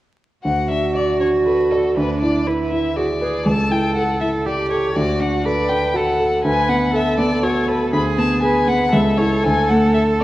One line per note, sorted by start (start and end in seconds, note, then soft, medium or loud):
0.44 1.93 D2 soft
0.44 1.99 F#4 soft
0.44 0.68 F#5 medium
0.70 1.10 D4 soft
0.70 0.95 E5 medium
0.95 1.36 D5 soft
0.95 1.20 D5 soft
1.20 1.61 D4 soft
1.20 1.28 C#5 soft
1.46 1.86 A4 soft
1.46 1.72 B4 soft
1.71 1.96 A4 soft
1.71 1.97 D5 soft
1.96 3.42 D2 soft
1.96 2.49 D4 soft
1.96 2.20 B4 medium
2.21 2.62 E4 soft
2.21 2.48 D5 soft
2.47 2.96 E4 soft
2.47 2.71 B4 soft
2.47 2.87 B4 soft
2.72 3.12 E4 soft
2.72 2.98 E5 soft
2.96 3.05 F#4 soft
2.96 3.36 G#4 soft
2.96 3.47 D5 medium
3.21 3.46 G#4 soft
3.21 3.46 B4 soft
3.46 4.91 C#2 soft
3.46 4.47 A4 medium
3.46 3.73 A5 medium
3.70 4.10 E4 soft
3.70 3.95 G5 medium
3.96 4.36 A4 soft
3.96 4.20 F#5 soft
4.21 4.60 E4 soft
4.21 4.29 E5 medium
4.46 4.95 G4 soft
4.46 4.86 G4 soft
4.46 4.70 D5 soft
4.71 4.95 A4 soft
4.71 4.97 C#5 medium
4.95 6.41 D2 soft
4.95 5.46 F#4 soft
4.95 5.21 D5 medium
5.20 5.60 D4 soft
5.20 5.45 F#5 medium
5.45 5.85 A4 soft
5.45 5.97 B4 medium
5.45 5.70 D5 medium
5.69 6.09 D4 soft
5.69 5.97 G5 medium
5.94 6.34 F#4 soft
5.94 6.45 A4 soft
5.94 6.43 F#5 medium
6.19 6.44 A4 soft
6.44 7.89 D2 soft
6.44 6.94 B4 medium
6.44 6.70 G#5 medium
6.69 7.09 B3 soft
6.69 6.97 F#5 medium
6.93 7.33 A4 soft
6.93 7.92 A4 medium
6.93 7.19 E5 medium
7.18 7.58 B3 soft
7.18 7.45 D5 medium
7.43 7.83 F#4 soft
7.43 7.70 C#5 medium
7.68 7.93 A4 soft
7.68 7.92 B4 soft
7.93 8.90 D2 soft
7.93 8.43 G#4 medium
7.93 8.01 B5 medium
8.18 8.58 B3 soft
8.18 8.42 A5 medium
8.42 8.83 G#4 soft
8.42 8.93 B4 medium
8.42 8.69 G#5 medium
8.68 8.93 B3 soft
8.68 8.94 F#5 medium
8.93 9.43 C#2 soft
8.93 10.24 A4 medium
8.93 9.19 E5 medium
9.17 9.42 E4 soft
9.17 9.42 A4 soft
9.17 9.45 C#5 medium
9.44 10.24 D2 soft
9.44 9.70 G#5 medium
9.69 10.11 A3 soft
9.69 9.93 F#5 medium
9.94 10.24 A4 soft
9.94 10.02 E5 medium
10.20 10.24 D5 medium